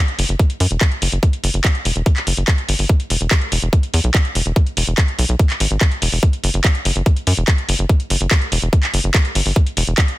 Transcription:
0.08 closed hi-hat
0.19 analog synth bass F#1, open hi-hat
0.29 analog synth bass F#1, closed hi-hat
0.39 kick, closed hi-hat
0.50 closed hi-hat
0.60 analog synth bass F#2, open hi-hat
0.71 analog synth bass E1, closed hi-hat
0.81 kick, clap, closed hi-hat
0.92 closed hi-hat
1.02 analog synth bass F#1, open hi-hat
1.12 analog synth bass F#1, closed hi-hat
1.23 kick, closed hi-hat
1.33 closed hi-hat
1.44 analog synth bass F#1, open hi-hat
1.54 analog synth bass F#1, closed hi-hat
1.64 kick, clap, closed hi-hat
1.75 closed hi-hat
1.85 analog synth bass E1, open hi-hat
1.96 analog synth bass E1, closed hi-hat
2.06 kick, closed hi-hat
2.16 clap, closed hi-hat
2.27 analog synth bass F#1, open hi-hat
2.37 analog synth bass F#1, closed hi-hat
2.48 kick, clap, closed hi-hat
2.58 closed hi-hat
2.69 analog synth bass G1, open hi-hat
2.79 analog synth bass G1, open hi-hat
2.89 kick, closed hi-hat
3.00 closed hi-hat
3.10 analog synth bass E1, open hi-hat
3.21 analog synth bass E1, closed hi-hat
3.31 kick, clap, closed hi-hat
3.41 closed hi-hat
3.52 analog synth bass E1, open hi-hat
3.62 analog synth bass E1, closed hi-hat
3.73 kick, closed hi-hat
3.83 closed hi-hat
3.94 analog synth bass E2, open hi-hat
4.04 analog synth bass B1, closed hi-hat
4.14 kick, clap, closed hi-hat
4.25 closed hi-hat
4.35 analog synth bass E1, open hi-hat
4.46 analog synth bass E1, closed hi-hat
4.56 kick, closed hi-hat
4.67 closed hi-hat
4.77 analog synth bass E1, open hi-hat
4.87 analog synth bass E1, closed hi-hat
4.98 kick, clap, closed hi-hat
5.08 closed hi-hat
5.19 analog synth bass B1, open hi-hat
5.29 analog synth bass B1, closed hi-hat
5.39 kick, closed hi-hat
5.50 clap, closed hi-hat
5.60 analog synth bass G#1, open hi-hat
5.71 analog synth bass G#1, closed hi-hat
5.81 kick, clap, closed hi-hat
5.92 closed hi-hat
6.02 analog synth bass E1, open hi-hat
6.12 analog synth bass E1, open hi-hat
6.23 kick, closed hi-hat
6.33 closed hi-hat
6.44 analog synth bass F#1, open hi-hat
6.54 analog synth bass F#1, closed hi-hat
6.64 kick, clap, closed hi-hat
6.75 closed hi-hat
6.85 analog synth bass F#1, open hi-hat
6.96 analog synth bass F#1, closed hi-hat
7.06 kick, closed hi-hat
7.17 closed hi-hat
7.27 analog synth bass F#2, open hi-hat
7.37 analog synth bass E1, closed hi-hat
7.48 kick, clap, closed hi-hat
7.58 closed hi-hat
7.69 analog synth bass F#1, open hi-hat
7.79 analog synth bass F#1, closed hi-hat
7.89 kick, closed hi-hat
8.00 closed hi-hat
8.10 analog synth bass F#1, open hi-hat
8.21 analog synth bass F#1, closed hi-hat
8.31 kick, clap, closed hi-hat
8.42 closed hi-hat
8.52 analog synth bass E1, open hi-hat
8.62 analog synth bass E1, closed hi-hat
8.73 kick, closed hi-hat
8.83 clap, closed hi-hat
8.94 analog synth bass F#1, open hi-hat
9.04 analog synth bass F#1, closed hi-hat
9.14 kick, clap, closed hi-hat
9.25 closed hi-hat
9.35 analog synth bass G1, open hi-hat
9.46 analog synth bass G1, open hi-hat
9.56 kick, closed hi-hat
9.67 closed hi-hat
9.77 analog synth bass E1, open hi-hat
9.87 analog synth bass E1, closed hi-hat
9.98 kick, clap, closed hi-hat
10.08 closed hi-hat

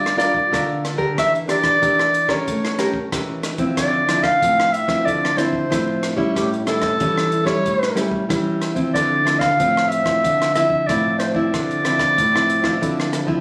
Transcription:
Already playing: nylon-string guitar G3 D4 F4 A#4, clarinet D5
0.06 cross-stick, closed hi-hat
0.17 nylon-string guitar D4 F4 A#4, clarinet D5, cross-stick, closed hi-hat
0.34 kick
0.52 nylon-string guitar D3 D4 F4 A#4, kick, cross-stick, closed hi-hat
0.85 cross-stick, closed hi-hat
0.98 nylon-string guitar D4 G4 A#4, kick
1.17 nylon-string guitar E3, clarinet E5, kick, cross-stick, closed hi-hat
1.35 closed hi-hat
1.48 nylon-string guitar D4 G4 A#4, clarinet D5, cross-stick, closed hi-hat
1.64 kick, cross-stick, closed hi-hat
1.81 nylon-string guitar E3 D4 G4 A#4, kick, closed hi-hat
1.99 cross-stick
2.14 closed hi-hat
2.28 nylon-string guitar C#4 G4 A#4, clarinet C#5, kick, cross-stick
2.48 nylon-string guitar A3, kick, closed hi-hat
2.65 cross-stick, closed hi-hat
2.78 nylon-string guitar C#4 G4 A#4, cross-stick, closed hi-hat
2.94 kick
3.12 nylon-string guitar E3 C#4 G4 A#4, kick, cross-stick, closed hi-hat
3.43 cross-stick, closed hi-hat
3.58 nylon-string guitar F3 C4 E4, kick, closed hi-hat
3.77 nylon-string guitar D3, clarinet D5, kick, cross-stick, closed hi-hat
4.09 nylon-string guitar F3 C4 E4, cross-stick, closed hi-hat
4.23 clarinet F5, kick, cross-stick, closed hi-hat
4.42 nylon-string guitar A2 F3 C4, kick, closed hi-hat
4.60 cross-stick
4.72 clarinet E5, closed hi-hat
4.88 nylon-string guitar F3 C4 E4, kick, cross-stick, closed hi-hat
5.05 nylon-string guitar D3, clarinet D5, kick, closed hi-hat
5.25 cross-stick, closed hi-hat
5.37 nylon-string guitar F3 C4 E4, clarinet C5, cross-stick, closed hi-hat
5.53 kick
5.70 nylon-string guitar A2 F3 C4 E4, kick, cross-stick, closed hi-hat
6.03 cross-stick, closed hi-hat
6.16 nylon-string guitar G3 C#4 E4, kick
6.36 nylon-string guitar A2, clarinet G4, kick, cross-stick, closed hi-hat
6.54 closed hi-hat
6.67 nylon-string guitar G3 C#4 E4, clarinet A4, cross-stick, closed hi-hat
6.82 kick, cross-stick, closed hi-hat
7.00 nylon-string guitar E3 G3 C#4 E4, kick, closed hi-hat
7.18 cross-stick
7.32 closed hi-hat
7.45 nylon-string guitar G3 C#4 E4, clarinet C#5, kick, cross-stick
7.64 nylon-string guitar A2, kick, closed hi-hat
7.83 cross-stick, closed hi-hat
7.95 nylon-string guitar G3 C#4 E4, cross-stick, closed hi-hat
8.11 kick
8.29 nylon-string guitar E3 G3 C#4 E4, kick, cross-stick, closed hi-hat
8.62 cross-stick, closed hi-hat
8.75 nylon-string guitar F3 C4 E4, kick, closed hi-hat
8.94 nylon-string guitar D3, clarinet D5, kick, cross-stick, closed hi-hat
9.25 nylon-string guitar F3 C4 E4, cross-stick, closed hi-hat
9.39 clarinet F5, kick, cross-stick, closed hi-hat
9.59 nylon-string guitar A2 F3 C4, kick, closed hi-hat
9.77 cross-stick
9.88 clarinet E5, closed hi-hat
10.05 nylon-string guitar F3 C4 E4, kick, cross-stick, closed hi-hat
10.24 nylon-string guitar D3, kick, closed hi-hat
10.42 cross-stick, closed hi-hat
10.54 nylon-string guitar F3 C4 E4, clarinet E5, cross-stick, closed hi-hat
10.70 kick
10.87 nylon-string guitar A2 F3 C4, clarinet D5, kick, cross-stick, closed hi-hat
10.91 nylon-string guitar E4
11.19 clarinet C5, cross-stick, closed hi-hat
11.34 nylon-string guitar F3 C4 E4, clarinet D5, kick
11.54 nylon-string guitar D3, kick, cross-stick, closed hi-hat
11.71 closed hi-hat
11.85 nylon-string guitar F3 C4 E4, cross-stick, closed hi-hat
11.99 kick, cross-stick, closed hi-hat
12.18 nylon-string guitar A2, kick, closed hi-hat
12.34 nylon-string guitar F3 C4 E4, cross-stick
12.50 closed hi-hat
12.63 nylon-string guitar F3 C4 E4, kick, cross-stick
12.81 nylon-string guitar D3 F3 C4 E4, kick, closed hi-hat
13.00 cross-stick, closed hi-hat
13.13 cross-stick, closed hi-hat
13.27 nylon-string guitar F3 C4 E4, kick

